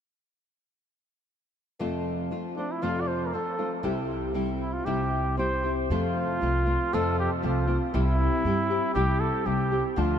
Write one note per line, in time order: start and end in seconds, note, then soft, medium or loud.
1.79 2.31 F2 medium
1.79 2.31 C3 medium
1.79 2.30 F3 medium
1.79 2.30 A3 medium
1.79 2.32 C4 soft
1.79 2.31 F4 medium
2.31 2.57 F3 soft
2.31 2.57 A3 soft
2.31 2.57 C4 soft
2.31 2.56 F4 soft
2.57 2.81 F3 soft
2.57 2.82 A3 soft
2.57 2.82 C4 soft
2.57 2.73 D4 medium
2.57 2.82 F4 soft
2.71 2.84 E4 medium
2.82 3.33 F2 medium
2.82 3.33 C3 medium
2.82 3.32 F3 medium
2.82 3.33 A3 medium
2.82 3.34 C4 medium
2.82 3.02 F4 medium
2.82 3.33 F4 medium
3.01 3.09 D5 medium
3.08 3.28 C5 medium
3.26 3.36 A#4 soft
3.33 3.58 F3 soft
3.33 3.58 A3 soft
3.33 3.58 C4 soft
3.33 3.57 F4 soft
3.33 3.72 A4 medium
3.59 3.83 F3 soft
3.59 3.83 A3 soft
3.59 3.82 C4 soft
3.59 3.84 F4 soft
3.83 4.83 C2 medium
3.83 4.34 C3 medium
3.83 4.33 G3 medium
3.83 4.34 C4 medium
3.83 4.34 E4 medium
3.83 4.34 G4 medium
4.34 4.85 G3 soft
4.34 4.87 C4 medium
4.34 4.86 E4 medium
4.34 4.86 G4 soft
4.61 4.74 E4 soft
4.73 4.86 F4 medium
4.85 5.87 C2 medium
4.85 5.37 C3 medium
4.85 5.36 G3 medium
4.85 5.37 C4 medium
4.85 5.38 E4 medium
4.85 5.37 G4 medium
4.85 5.38 G4 medium
5.37 5.63 G3 soft
5.37 5.63 C4 soft
5.37 5.63 E4 soft
5.37 5.62 G4 soft
5.37 5.74 C5 medium
5.64 5.90 C4 soft
5.64 5.90 E4 soft
5.64 5.89 G4 soft
5.90 6.23 F2 medium
5.90 6.42 F2 medium
5.90 6.42 C3 medium
5.90 6.40 F3 medium
5.90 6.40 A3 medium
5.90 6.42 C4 medium
5.90 6.95 F4 medium
5.90 6.42 F4 medium
6.41 6.75 C2 medium
6.41 6.66 F3 soft
6.41 6.65 A3 soft
6.41 6.65 C4 soft
6.41 6.65 F4 medium
6.66 6.92 F3 soft
6.66 6.92 A3 soft
6.66 6.92 C4 soft
6.66 6.92 F4 soft
6.93 7.43 F2 medium
6.93 7.26 F2 medium
6.93 7.43 C3 medium
6.93 7.41 F3 medium
6.93 7.42 A3 medium
6.93 7.44 C4 medium
6.93 7.43 F4 medium
6.93 7.19 A4 medium
7.20 7.30 G4 medium
7.42 7.76 C2 medium
7.42 7.68 F3 soft
7.42 7.67 A3 medium
7.42 7.67 C4 soft
7.42 7.78 F4 medium
7.42 7.66 F4 medium
7.67 7.93 F3 soft
7.67 7.93 A3 soft
7.67 7.93 C4 soft
7.67 7.93 F4 soft
7.94 8.27 C2 medium
7.94 8.44 C3 medium
7.94 8.44 G3 medium
7.94 8.44 C4 medium
7.94 8.91 E4 medium
7.94 8.45 E4 medium
7.94 8.45 G4 medium
8.45 8.77 G2 medium
8.45 8.70 G3 soft
8.45 8.70 C4 soft
8.45 8.70 E4 medium
8.45 8.69 G4 soft
8.70 8.94 C4 soft
8.70 8.95 E4 soft
8.70 8.95 G4 soft
8.94 9.28 C2 medium
8.94 9.45 C3 medium
8.94 9.44 G3 medium
8.94 9.45 C4 medium
8.94 9.45 E4 medium
8.94 9.21 G4 medium
8.94 9.46 G4 medium
9.20 9.48 A4 medium
9.45 9.79 C2 medium
9.45 9.71 G3 soft
9.45 9.71 C4 soft
9.45 9.71 E4 soft
9.45 9.84 G4 medium
9.45 9.70 G4 soft
9.72 9.97 C4 soft
9.72 9.97 E4 soft
9.72 9.97 G4 soft
9.96 10.19 D2 medium
9.96 10.19 D3 medium
9.96 10.19 F3 medium
9.96 10.19 A3 medium
9.96 10.19 D4 medium
9.96 10.19 F4 medium